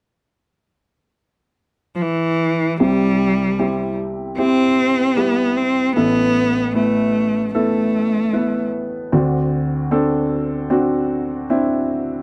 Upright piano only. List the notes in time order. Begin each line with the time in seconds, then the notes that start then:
2.80 C2 C3 C4 E4 G4
3.59 C4 E4 G4
4.38 C4 E4 G4
5.17 G3 E4 G4
5.96 A1 A2 B3 E4 A4
6.75 B3 E4 B4
7.54 B3 E4 A4
8.33 B3 E4 B4
9.12 D2 D3 C4 D4 F#4
9.91 C4 D4 A4
10.70 C4 D4 F#4
11.50 C4 D4 E4